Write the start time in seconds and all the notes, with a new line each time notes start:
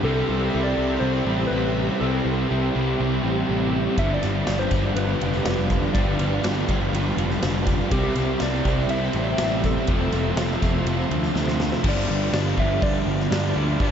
Already playing: G4 E5 B5
0.04 C2 C3 G3 C4 E4 G4 A4
0.15 A4
0.29 C2 C4 E4 G4
0.50 C3 E5
0.55 C2 G3 C4 E4 G4
0.64 D5
0.76 C2 G3 C4 E4 G4
0.81 C4
1.00 C2 C3 C5
1.04 G3 C4 E4 G4
1.11 C5
1.25 A1 G3 C4 G4
1.30 C4 E4
1.47 C3 B4
1.51 A1 G3 C4 E4 G4
2.00 C2 C3 G3 C4 E4 G4 A4
2.25 C2 C4 E4 G4
2.48 C2 C3 G3 C4 E4
2.52 G4
2.75 C2 G3 C4 E4 G4
2.99 C2 C3 G3 C4 E4 G4
3.23 A1 G3 C4 E4 G4
3.48 A1 C3 G3 C4 E4 G4
3.97 G1 G2 D3 F3 G3 B3 F4 D5 E5 F5 B5, kick, ride, tambourine
4.14 D5
4.22 G1 F3 B3 F4, snare, ride, tambourine
4.46 G1 G2 D3 F3 G3 B3 F4 D5, snare, ride, tambourine
4.59 C5
4.70 G1 D3 F3 G3 B3 F4, kick, ride, tambourine
4.95 G1 G2 D3 F3 G3 B3 F4 B4, ride, tambourine
5.09 tambourine
5.19 F1 D3 G3 B3 F4, ride, tambourine
5.23 F3
5.33 tambourine
5.43 F1 G2 D3 F3 G3 B3, snare, ride, tambourine
5.48 F4
5.58 tambourine
5.70 kick, ride, tambourine
5.83 tambourine
5.94 G1 G2 D3 F3 G3 B3 F4 D5, kick, ride, tambourine
6.19 G1 F3 B3 F4, ride, tambourine
6.43 G1 G2 D3 F3 G3 B3 F4, snare, ride, tambourine
6.68 G1 D3 F3 G3 B3 F4, kick, ride, tambourine
6.81 tambourine
6.92 G1 G2 D3 F3 G3 B3, ride, tambourine
6.96 F4
7.06 tambourine
7.17 F1 D3 F3 G3 B3 F4, ride, tambourine
7.32 tambourine
7.41 F1 G2 D3 F3 G3, snare, ride, tambourine
7.45 B3 F4
7.56 tambourine
7.67 kick, ride, tambourine
7.81 tambourine
7.91 C2 C3 G3 C4 E4 G4 C5 E5, kick, ride, tambourine
8.04 G4
8.16 C2 G3 C4 E4, ride, tambourine
8.40 C2 C3 G3 C4 E4 D5, snare, ride, tambourine
8.65 C2 G3 C4 E4, kick, ride, tambourine
8.81 tambourine
8.88 C2 C3 G3 E5, ride, tambourine
8.93 C4 E4
9.04 tambourine
9.13 A1 C4 E4, ride, tambourine
9.18 G3 C4
9.38 A1 C3 G3, snare, ride, tambourine
9.42 C4 E4
9.53 tambourine
9.64 A4, kick, ride, tambourine
9.77 tambourine
9.87 F1 F2 C3 F3 A3 C4 F4 C5 A5, kick, ride, tambourine
10.02 tambourine
10.12 F1 A3 C4 F4, ride, tambourine
10.36 F1 F2 C3 F3 A3 C4, snare, ride, tambourine
10.41 F4
10.62 F1 C3 F3 A3 C4 F4, kick, ride, tambourine
10.76 tambourine
10.85 F1 F2 C3 F3 A3 C4 F4, ride, tambourine
11.01 tambourine
11.10 D2 C3 F3 A3 C4 F4, ride
11.24 tambourine
11.34 D2 F2 C3 F3 A3 C4 F4, snare, tambourine
11.48 snare, tambourine
11.60 snare, tambourine
11.72 snare, tambourine
11.84 G1 G2 D3 F3 G3 B3 F4 G4 D5 F5 B5, kick, crash
11.88 D5
12.09 G1 D3 G3
12.32 G1 G2 D3 G3 D5, snare, open hi-hat, tambourine
12.57 G1 G2 D3 F3 G3 B3 F4 E5, kick
12.82 G1 D5, kick, open hi-hat
13.06 G1 D3 G3
13.20 snare
13.31 G2 D3 F3 G3 B3 F4, snare, open hi-hat, tambourine
13.56 D2 G2 D3 G3
13.80 G1 G2 D3 F3 G3 B3 F4 B4, kick, open hi-hat